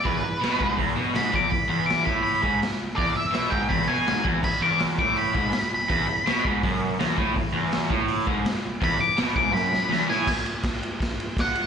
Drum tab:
CC |--------|--------|--------|x-------|
RD |--------|--------|--------|--------|
HH |o-o-o-o-|o-o-o-o-|o-o-o-o-|--o-o-o-|
SD |--o---o-|--o---o-|--o---o-|--o---o-|
BD |o--oo--o|o--o-o--|o--oo--o|o--o-o--|

CC |--------|--------|--------|x-------|
RD |--------|--------|--------|-xxxxxxx|
HH |o-o-o-o-|o-o-o-o-|o-o-----|--------|
SD |--o---o-|--o---o-|--o-oooo|o-o-o-o-|
BD |o--oo--o|o--o-o--|o--o----|o-o-o-o-|